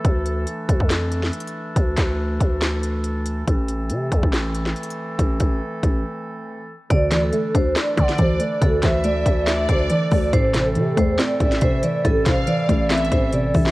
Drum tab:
HH |x-----x-----x-----x-----x-----x-----x-x-x-------|x-----x-----------x-----x-----x-----x-----x-----|x-----x-----x-----x-----x-----x-----x-x-x-------|x-----x-----------x-----------------------------|
CP |------------------------x-----------------------|------x-----------------x-----------------------|------------------------x-----------------------|------------------------------------------------|
SD |------------------------o--------o--------------|------o-----------------o-----------------------|------------------------o--------o--------------|------------------------------------------------|
BD |o-----------------o--o--------------------------|o-----o-----------o-----------------------------|o-----------------o--o--------------------------|o-----o-----------o-----------------------------|

HH |x-----x-----x-----x-----x-----x--x--x-----x-----|x-----x-----x-----x-----x-----x-----x-----o-----|x-----x-----x-----x-----x-----x--x--x-----x-----|x-----x-----x-----x-----x-x-x-x-----x-----o-----|
CP |------x-----------------x-----------------------|------x-----------------x-----------------------|------x-----------------x-----------------------|------x-----------------x--------------------x--|
SD |------o-----------------o--------o--------------|------o-----------------o-----------------------|------o-----------------o--------o--------------|------o-----------------o--------------------o--|
BD |o-----------------o-----------o-----o-----------|o-----o-----------o-----------o-----------o-----|o-----------------o-----------o-----o-----------|o-----o-----------o-----------o-----------o-----|